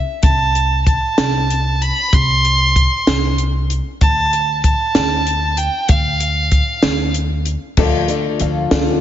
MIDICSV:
0, 0, Header, 1, 6, 480
1, 0, Start_track
1, 0, Tempo, 628931
1, 176, Time_signature, 6, 3, 24, 8
1, 6874, End_track
2, 0, Start_track
2, 0, Title_t, "Fiddle"
2, 0, Program_c, 0, 110
2, 176, Note_on_c, 0, 81, 93
2, 627, Note_off_c, 0, 81, 0
2, 659, Note_on_c, 0, 81, 81
2, 1387, Note_on_c, 0, 83, 90
2, 1399, Note_off_c, 0, 81, 0
2, 1631, Note_on_c, 0, 84, 99
2, 1642, Note_off_c, 0, 83, 0
2, 2586, Note_off_c, 0, 84, 0
2, 3065, Note_on_c, 0, 81, 98
2, 3512, Note_off_c, 0, 81, 0
2, 3538, Note_on_c, 0, 81, 94
2, 4262, Note_on_c, 0, 79, 84
2, 4273, Note_off_c, 0, 81, 0
2, 4505, Note_on_c, 0, 77, 84
2, 4516, Note_off_c, 0, 79, 0
2, 5460, Note_off_c, 0, 77, 0
2, 6874, End_track
3, 0, Start_track
3, 0, Title_t, "Grand piano"
3, 0, Program_c, 1, 0
3, 5934, Note_on_c, 1, 57, 91
3, 5937, Note_on_c, 1, 62, 77
3, 5940, Note_on_c, 1, 38, 75
3, 5941, Note_on_c, 1, 50, 72
3, 5943, Note_on_c, 1, 65, 81
3, 5947, Note_on_c, 1, 74, 92
3, 6081, Note_off_c, 1, 57, 0
3, 6082, Note_off_c, 1, 62, 0
3, 6085, Control_c, 1, 64, 127
3, 6086, Note_off_c, 1, 65, 0
3, 6088, Note_off_c, 1, 74, 0
3, 6164, Note_on_c, 1, 57, 69
3, 6170, Note_on_c, 1, 62, 64
3, 6175, Note_on_c, 1, 65, 66
3, 6180, Note_on_c, 1, 74, 81
3, 6316, Note_off_c, 1, 57, 0
3, 6319, Note_off_c, 1, 62, 0
3, 6321, Note_off_c, 1, 65, 0
3, 6324, Note_off_c, 1, 74, 0
3, 6404, Note_on_c, 1, 57, 68
3, 6413, Note_on_c, 1, 62, 64
3, 6417, Note_on_c, 1, 65, 62
3, 6418, Note_on_c, 1, 77, 72
3, 6555, Note_off_c, 1, 57, 0
3, 6560, Note_off_c, 1, 62, 0
3, 6562, Note_off_c, 1, 65, 0
3, 6563, Note_off_c, 1, 77, 0
3, 6645, Note_on_c, 1, 57, 77
3, 6650, Note_on_c, 1, 62, 68
3, 6657, Note_on_c, 1, 65, 73
3, 6660, Note_on_c, 1, 74, 89
3, 6795, Note_off_c, 1, 57, 0
3, 6798, Note_off_c, 1, 62, 0
3, 6802, Note_off_c, 1, 65, 0
3, 6803, Note_off_c, 1, 74, 0
3, 6874, Note_off_c, 1, 38, 0
3, 6874, Note_off_c, 1, 50, 0
3, 6874, End_track
4, 0, Start_track
4, 0, Title_t, "Twelve-string acoustic guitar"
4, 0, Program_c, 2, 25
4, 5933, Note_on_c, 2, 50, 73
4, 5935, Note_on_c, 2, 53, 76
4, 5940, Note_on_c, 2, 62, 80
4, 5942, Note_on_c, 2, 65, 81
4, 5943, Note_on_c, 2, 69, 91
4, 6165, Note_off_c, 2, 69, 0
4, 6171, Note_off_c, 2, 65, 0
4, 6174, Note_off_c, 2, 50, 0
4, 6174, Note_on_c, 2, 69, 57
4, 6175, Note_off_c, 2, 53, 0
4, 6177, Note_off_c, 2, 62, 0
4, 6181, Note_on_c, 2, 65, 54
4, 6191, Note_on_c, 2, 62, 48
4, 6408, Note_on_c, 2, 53, 61
4, 6409, Note_off_c, 2, 62, 0
4, 6414, Note_off_c, 2, 69, 0
4, 6415, Note_off_c, 2, 65, 0
4, 6419, Note_on_c, 2, 62, 56
4, 6424, Note_on_c, 2, 65, 63
4, 6431, Note_on_c, 2, 69, 59
4, 6644, Note_off_c, 2, 69, 0
4, 6647, Note_off_c, 2, 65, 0
4, 6651, Note_off_c, 2, 53, 0
4, 6653, Note_on_c, 2, 69, 84
4, 6656, Note_off_c, 2, 62, 0
4, 6656, Note_on_c, 2, 65, 76
4, 6663, Note_on_c, 2, 53, 73
4, 6664, Note_on_c, 2, 62, 70
4, 6667, Note_on_c, 2, 50, 66
4, 6874, Note_off_c, 2, 50, 0
4, 6874, Note_off_c, 2, 53, 0
4, 6874, Note_off_c, 2, 62, 0
4, 6874, Note_off_c, 2, 65, 0
4, 6874, Note_off_c, 2, 69, 0
4, 6874, End_track
5, 0, Start_track
5, 0, Title_t, "Upright bass"
5, 0, Program_c, 3, 32
5, 177, Note_on_c, 3, 36, 77
5, 723, Note_off_c, 3, 36, 0
5, 904, Note_on_c, 3, 36, 81
5, 1448, Note_off_c, 3, 36, 0
5, 1626, Note_on_c, 3, 36, 87
5, 2169, Note_off_c, 3, 36, 0
5, 2344, Note_on_c, 3, 36, 85
5, 2887, Note_off_c, 3, 36, 0
5, 3061, Note_on_c, 3, 38, 91
5, 3606, Note_off_c, 3, 38, 0
5, 3780, Note_on_c, 3, 38, 86
5, 4324, Note_off_c, 3, 38, 0
5, 4493, Note_on_c, 3, 38, 93
5, 5040, Note_off_c, 3, 38, 0
5, 5211, Note_on_c, 3, 38, 90
5, 5757, Note_off_c, 3, 38, 0
5, 5934, Note_on_c, 3, 38, 87
5, 6297, Note_off_c, 3, 38, 0
5, 6413, Note_on_c, 3, 38, 86
5, 6595, Note_off_c, 3, 38, 0
5, 6651, Note_on_c, 3, 38, 87
5, 6874, Note_off_c, 3, 38, 0
5, 6874, End_track
6, 0, Start_track
6, 0, Title_t, "Drums"
6, 173, Note_on_c, 9, 42, 78
6, 177, Note_on_c, 9, 36, 93
6, 250, Note_off_c, 9, 42, 0
6, 253, Note_off_c, 9, 36, 0
6, 421, Note_on_c, 9, 42, 58
6, 497, Note_off_c, 9, 42, 0
6, 661, Note_on_c, 9, 36, 73
6, 661, Note_on_c, 9, 42, 54
6, 737, Note_off_c, 9, 36, 0
6, 738, Note_off_c, 9, 42, 0
6, 900, Note_on_c, 9, 38, 103
6, 900, Note_on_c, 9, 42, 77
6, 976, Note_off_c, 9, 38, 0
6, 976, Note_off_c, 9, 42, 0
6, 1147, Note_on_c, 9, 42, 53
6, 1224, Note_off_c, 9, 42, 0
6, 1388, Note_on_c, 9, 42, 53
6, 1464, Note_off_c, 9, 42, 0
6, 1624, Note_on_c, 9, 36, 101
6, 1626, Note_on_c, 9, 42, 76
6, 1701, Note_off_c, 9, 36, 0
6, 1702, Note_off_c, 9, 42, 0
6, 1868, Note_on_c, 9, 42, 50
6, 1944, Note_off_c, 9, 42, 0
6, 2106, Note_on_c, 9, 36, 71
6, 2108, Note_on_c, 9, 42, 55
6, 2182, Note_off_c, 9, 36, 0
6, 2184, Note_off_c, 9, 42, 0
6, 2345, Note_on_c, 9, 38, 103
6, 2345, Note_on_c, 9, 42, 68
6, 2422, Note_off_c, 9, 38, 0
6, 2422, Note_off_c, 9, 42, 0
6, 2582, Note_on_c, 9, 42, 54
6, 2659, Note_off_c, 9, 42, 0
6, 2824, Note_on_c, 9, 42, 59
6, 2900, Note_off_c, 9, 42, 0
6, 3063, Note_on_c, 9, 36, 104
6, 3063, Note_on_c, 9, 42, 75
6, 3139, Note_off_c, 9, 36, 0
6, 3139, Note_off_c, 9, 42, 0
6, 3305, Note_on_c, 9, 42, 54
6, 3382, Note_off_c, 9, 42, 0
6, 3541, Note_on_c, 9, 42, 63
6, 3542, Note_on_c, 9, 36, 73
6, 3617, Note_off_c, 9, 42, 0
6, 3618, Note_off_c, 9, 36, 0
6, 3777, Note_on_c, 9, 38, 100
6, 3777, Note_on_c, 9, 42, 77
6, 3853, Note_off_c, 9, 38, 0
6, 3853, Note_off_c, 9, 42, 0
6, 4019, Note_on_c, 9, 42, 58
6, 4095, Note_off_c, 9, 42, 0
6, 4252, Note_on_c, 9, 42, 62
6, 4329, Note_off_c, 9, 42, 0
6, 4492, Note_on_c, 9, 42, 86
6, 4496, Note_on_c, 9, 36, 101
6, 4568, Note_off_c, 9, 42, 0
6, 4572, Note_off_c, 9, 36, 0
6, 4734, Note_on_c, 9, 42, 63
6, 4811, Note_off_c, 9, 42, 0
6, 4972, Note_on_c, 9, 42, 59
6, 4974, Note_on_c, 9, 36, 74
6, 5048, Note_off_c, 9, 42, 0
6, 5050, Note_off_c, 9, 36, 0
6, 5209, Note_on_c, 9, 38, 100
6, 5209, Note_on_c, 9, 42, 79
6, 5285, Note_off_c, 9, 38, 0
6, 5285, Note_off_c, 9, 42, 0
6, 5451, Note_on_c, 9, 42, 60
6, 5528, Note_off_c, 9, 42, 0
6, 5690, Note_on_c, 9, 42, 58
6, 5766, Note_off_c, 9, 42, 0
6, 5930, Note_on_c, 9, 49, 84
6, 5933, Note_on_c, 9, 36, 109
6, 6006, Note_off_c, 9, 49, 0
6, 6010, Note_off_c, 9, 36, 0
6, 6169, Note_on_c, 9, 42, 55
6, 6245, Note_off_c, 9, 42, 0
6, 6407, Note_on_c, 9, 42, 58
6, 6483, Note_off_c, 9, 42, 0
6, 6649, Note_on_c, 9, 38, 104
6, 6649, Note_on_c, 9, 42, 81
6, 6651, Note_on_c, 9, 36, 76
6, 6726, Note_off_c, 9, 38, 0
6, 6726, Note_off_c, 9, 42, 0
6, 6727, Note_off_c, 9, 36, 0
6, 6874, End_track
0, 0, End_of_file